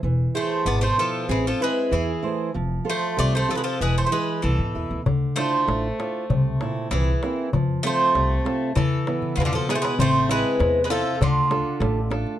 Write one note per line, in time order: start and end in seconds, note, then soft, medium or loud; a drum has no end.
0.03 0.25 E1 medium
0.03 0.65 E3 medium
0.35 0.65 A3 medium
0.35 0.85 E4 medium
0.35 0.86 G#4 soft
0.35 0.67 C5 medium
0.65 0.88 G#1 medium
0.65 1.28 B2 medium
0.65 0.81 B3 medium
0.65 0.82 D5 loud
0.81 0.97 A3 medium
0.81 0.99 C5 medium
0.98 1.28 F3 medium
0.98 1.23 E4 medium
0.98 1.28 A4 medium
0.98 1.24 B4 medium
1.28 1.51 A1 medium
1.28 1.45 E3 medium
1.28 1.90 C4 medium
1.28 1.46 G#4 medium
1.47 1.61 F3 medium
1.47 1.62 A4 medium
1.60 1.92 G#3 medium
1.60 2.11 E4 medium
1.60 1.91 B4 medium
1.60 2.11 E5 medium
1.91 2.14 E2 medium
1.91 2.53 E3 medium
1.91 2.52 E3 medium
1.91 2.52 G#4 medium
2.23 2.49 A3 soft
2.23 2.48 E4 medium
2.23 2.49 C5 medium
2.54 2.77 F1 medium
2.54 3.16 F3 medium
2.85 3.36 F4 medium
2.85 3.36 A4 soft
2.85 3.36 C5 medium
2.90 3.18 A3 medium
2.90 3.18 C5 loud
3.17 3.40 C2 medium
3.17 3.78 C3 medium
3.17 3.33 A3 medium
3.17 3.35 D5 loud
3.35 3.50 A3 medium
3.35 3.49 C5 medium
3.49 3.56 F3 medium
3.49 3.74 F4 medium
3.49 3.74 A4 soft
3.49 3.55 A4 medium
3.49 3.75 C5 medium
3.55 3.62 G#3 medium
3.55 3.62 B4 medium
3.64 3.81 F3 medium
3.64 3.81 A4 medium
3.80 4.03 E1 medium
3.80 4.41 E3 medium
3.80 3.96 G#3 medium
3.80 3.96 B4 medium
3.98 4.05 A3 medium
3.98 4.06 C5 medium
4.06 4.12 A3 medium
4.06 4.12 C5 medium
4.11 4.41 G#3 medium
4.11 4.61 E4 soft
4.11 4.62 B4 medium
4.11 4.41 B4 medium
4.42 4.54 C2 medium
4.42 5.04 B2 medium
4.42 5.01 E3 medium
4.42 5.02 A4 medium
4.59 4.73 G#2 medium
4.75 4.89 E2 medium
4.75 5.00 E4 soft
4.75 5.00 B4 medium
4.90 5.04 D2 medium
5.06 5.28 D2 medium
5.06 5.66 D3 medium
5.06 darbuka dum medium
5.36 6.87 A3 medium
5.36 5.87 D4 medium
5.36 5.87 E4 soft
5.36 5.87 F4 medium
5.36 6.87 C5 loud
5.36 darbuka tek medium
5.53 darbuka tek soft
5.68 5.89 A1 medium
5.68 6.28 A3 medium
5.68 darbuka tek medium
5.99 6.24 D4 soft
5.99 6.24 E4 soft
5.99 6.24 F4 medium
5.99 darbuka tek medium
6.30 6.51 C2 medium
6.30 6.90 C3 medium
6.30 darbuka dum medium
6.61 7.11 A#2 medium
6.61 7.11 C4 soft
6.61 7.11 E4 medium
6.61 darbuka tek medium
6.76 darbuka tek soft
6.91 7.13 C2 medium
6.91 7.49 E3 medium
6.91 7.52 E3 medium
6.91 7.50 G#4 medium
6.91 darbuka tek medium
7.23 7.48 A#3 medium
7.23 7.48 C4 soft
7.23 7.48 E4 medium
7.23 darbuka tek medium
7.53 7.75 F2 medium
7.53 8.13 F3 medium
7.53 darbuka dum medium
7.83 8.72 A3 medium
7.83 8.33 C4 medium
7.83 8.34 F4 soft
7.83 8.34 A4 medium
7.83 8.77 C5 loud
7.83 darbuka tek medium
8.00 darbuka tek soft
8.15 8.36 C2 medium
8.15 8.75 C3 medium
8.15 darbuka tek medium
8.45 8.70 C4 medium
8.45 8.70 F4 soft
8.45 8.70 A4 medium
8.45 darbuka tek medium
8.75 8.98 E2 medium
8.75 9.33 E3 medium
8.75 9.36 E3 medium
8.75 9.34 A4 medium
8.75 darbuka dum medium
9.07 9.56 B3 medium
9.07 9.56 E4 soft
9.07 9.56 B4 medium
9.07 darbuka tek medium
9.22 darbuka dum soft
9.36 9.59 E2 medium
9.36 9.97 B2 medium
9.36 9.40 B3 medium
9.36 9.41 F4 medium
9.36 darbuka dum medium
9.40 9.44 E3 medium
9.40 9.45 G#4 medium
9.45 9.52 D3 medium
9.45 9.53 F4 medium
9.53 9.67 F3 medium
9.53 9.70 A4 medium
9.53 darbuka dum medium
9.68 9.75 G#3 medium
9.68 9.93 B3 medium
9.68 9.93 E4 soft
9.68 9.93 G#4 medium
9.68 9.75 B4 medium
9.68 darbuka tek medium
9.75 9.80 A3 medium
9.75 9.81 C5 medium
9.82 9.98 G#3 medium
9.82 9.99 B4 medium
9.82 darbuka tek medium
9.99 10.41 A1 medium
9.99 10.28 A3 medium
9.99 10.58 C4 medium
9.99 10.31 C5 loud
9.99 darbuka dum medium
10.29 10.81 G#3 medium
10.29 10.78 E4 medium
10.29 10.81 B4 loud
10.29 10.78 E5 medium
10.29 darbuka tek medium
10.59 11.02 E2 loud
10.59 11.18 C3 medium
10.59 darbuka tek medium
10.84 10.90 G#3 medium
10.84 10.90 B4 medium
10.90 11.18 F3 medium
10.90 11.14 E4 medium
10.90 11.14 A4 soft
10.90 11.22 A4 loud
10.90 11.15 C5 medium
10.90 darbuka tek medium
11.06 darbuka tek soft
11.21 11.63 D2 loud
11.21 11.79 D3 medium
11.21 12.08 D3 medium
11.21 12.09 F4 medium
11.21 darbuka dum medium
11.51 11.99 D4 medium
11.51 11.99 F4 medium
11.51 12.00 A4 medium
11.51 darbuka tek medium
11.80 12.23 A1 loud
11.80 12.39 A3 medium
11.80 darbuka tek medium
12.10 12.35 D4 medium
12.10 12.35 F4 medium
12.10 12.35 A4 medium
12.10 darbuka tek medium
12.27 darbuka tek soft